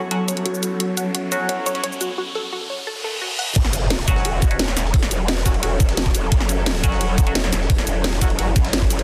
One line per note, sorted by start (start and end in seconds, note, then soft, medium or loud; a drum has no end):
0.00 2.14 F#3 medium
0.00 2.18 F#3 medium
0.00 2.18 B3 medium
0.00 2.14 C#4 medium
0.00 2.18 E4 medium
0.00 2.14 F#4 medium
0.00 2.14 A4 medium
0.00 2.18 A4 medium
0.00 2.18 C#5 medium
0.00 riser medium
0.11 0.18 F#3 medium
0.11 0.18 C#4 medium
0.11 0.18 F#4 medium
0.11 0.22 A4 medium
0.11 closed hi-hat medium
0.28 0.40 C#5 medium
0.28 closed hi-hat medium
0.28 shaker medium
0.37 closed hi-hat soft
0.46 0.62 F#4 medium
0.46 closed hi-hat medium
0.54 shaker soft
0.63 0.74 F#4 medium
0.63 closed hi-hat medium
0.63 shaker medium
0.80 0.87 F#4 medium
0.80 closed hi-hat medium
0.97 1.14 F#5 medium
0.97 closed hi-hat medium
0.97 shaker medium
1.15 1.21 F#4 medium
1.15 closed hi-hat medium
1.32 1.73 F#3 loud
1.32 1.73 C#4 medium
1.32 1.73 F#4 loud
1.32 1.43 C#5 medium
1.32 closed hi-hat medium
1.32 shaker medium
1.49 1.60 C#5 medium
1.49 closed hi-hat medium
1.66 1.82 C#5 loud
1.66 closed hi-hat medium
1.66 shaker medium
1.75 1.82 F#3 medium
1.75 1.82 C#4 medium
1.75 1.82 F#4 medium
1.75 closed hi-hat soft
1.84 1.95 C#5 loud
1.84 closed hi-hat medium
1.92 shaker soft
2.01 2.12 F#4 medium
2.01 closed hi-hat medium
2.01 shaker medium
2.18 2.25 F#4 medium
2.35 2.46 A4 loud
2.53 2.59 F#4 medium
2.70 2.81 C#5 medium
2.87 2.98 A4 medium
2.87 reverse cymbal medium
3.04 3.15 A4 medium
3.22 3.28 F#4 medium
3.39 3.45 F#5 loud
3.56 4.06 F#1 loud
3.56 9.03 F#3 medium
3.56 9.03 C#4 medium
3.56 6.29 F#4 medium
3.56 9.03 A4 medium
3.56 kick loud
3.56 closed hi-hat medium
3.56 crash loud
3.56 ride medium
3.56 impact medium
3.65 snare medium
3.73 closed hi-hat medium
3.73 ride medium
3.73 shaker medium
3.90 snare loud
3.90 closed hi-hat loud
3.90 ride medium
3.99 snare soft
4.08 4.24 F#1 loud
4.08 4.49 F#3 loud
4.08 4.49 C#4 medium
4.08 4.49 F#4 loud
4.08 kick medium
4.08 closed hi-hat medium
4.08 ride medium
4.08 shaker medium
4.16 snare medium
4.25 4.75 E1 loud
4.25 closed hi-hat medium
4.25 ride medium
4.42 kick loud
4.42 closed hi-hat medium
4.42 ride medium
4.42 shaker medium
4.51 4.58 F#3 medium
4.51 4.58 C#4 medium
4.51 4.58 F#4 medium
4.51 closed hi-hat soft
4.59 snare loud
4.59 closed hi-hat loud
4.59 ride medium
4.68 snare medium
4.77 5.10 E1 loud
4.77 snare soft
4.77 closed hi-hat medium
4.77 ride medium
4.77 shaker medium
4.85 snare soft
4.94 kick loud
4.94 closed hi-hat loud
4.94 open hi-hat medium
5.03 snare medium
5.11 5.61 E1 loud
5.11 closed hi-hat medium
5.11 ride medium
5.11 shaker medium
5.28 snare loud
5.28 closed hi-hat medium
5.28 ride medium
5.37 snare medium
5.46 5.52 F#3 medium
5.46 5.52 C#4 medium
5.46 5.52 F#4 medium
5.46 kick medium
5.46 closed hi-hat medium
5.46 ride medium
5.46 shaker medium
5.54 ride soft
5.63 6.13 E1 loud
5.63 5.70 F#3 medium
5.63 5.70 C#4 medium
5.63 5.70 F#4 medium
5.63 closed hi-hat medium
5.63 ride medium
5.80 kick loud
5.80 closed hi-hat medium
5.80 ride medium
5.80 shaker medium
5.89 snare medium
5.89 closed hi-hat soft
5.97 snare loud
5.97 closed hi-hat loud
5.97 ride medium
6.06 kick medium
6.15 6.30 E1 medium
6.15 closed hi-hat medium
6.15 ride medium
6.15 shaker medium
6.32 6.82 F#1 loud
6.32 9.03 E4 medium
6.32 kick loud
6.32 closed hi-hat medium
6.32 ride medium
6.40 snare medium
6.49 closed hi-hat medium
6.49 ride medium
6.49 shaker medium
6.66 snare loud
6.66 closed hi-hat medium
6.66 ride medium
6.75 snare soft
6.84 6.99 F#1 loud
6.84 7.25 F#3 loud
6.84 7.25 C#4 medium
6.84 7.25 F#4 loud
6.84 kick medium
6.84 closed hi-hat medium
6.84 ride medium
6.84 shaker medium
6.92 snare medium
7.01 7.51 E1 loud
7.01 closed hi-hat medium
7.01 ride medium
7.18 kick loud
7.18 closed hi-hat medium
7.18 ride medium
7.18 shaker medium
7.27 7.33 F#3 medium
7.27 7.33 C#4 medium
7.27 7.33 F#4 medium
7.27 closed hi-hat soft
7.35 snare loud
7.35 closed hi-hat medium
7.35 ride medium
7.44 snare medium
7.53 7.86 E1 loud
7.53 snare soft
7.53 closed hi-hat medium
7.53 ride medium
7.53 shaker medium
7.61 snare soft
7.70 kick loud
7.70 closed hi-hat medium
7.70 open hi-hat medium
7.78 snare medium
7.87 8.37 E1 loud
7.87 closed hi-hat medium
7.87 ride medium
7.87 shaker medium
8.04 snare loud
8.04 closed hi-hat medium
8.04 ride medium
8.13 snare medium
8.21 8.28 F#3 medium
8.21 8.28 C#4 medium
8.21 8.28 F#4 medium
8.21 kick medium
8.21 closed hi-hat medium
8.21 ride medium
8.21 shaker medium
8.30 ride soft
8.39 8.55 F#1 loud
8.39 8.45 F#3 medium
8.39 8.45 C#4 medium
8.39 8.45 F#4 medium
8.39 closed hi-hat medium
8.39 ride medium
8.56 8.89 G1 loud
8.56 kick loud
8.56 closed hi-hat medium
8.56 ride medium
8.56 shaker medium
8.65 snare medium
8.65 closed hi-hat soft
8.73 snare loud
8.73 closed hi-hat medium
8.73 ride medium
8.82 kick medium
8.90 9.03 F#1 medium
8.90 closed hi-hat medium
8.90 ride medium
8.90 shaker medium
8.99 closed hi-hat soft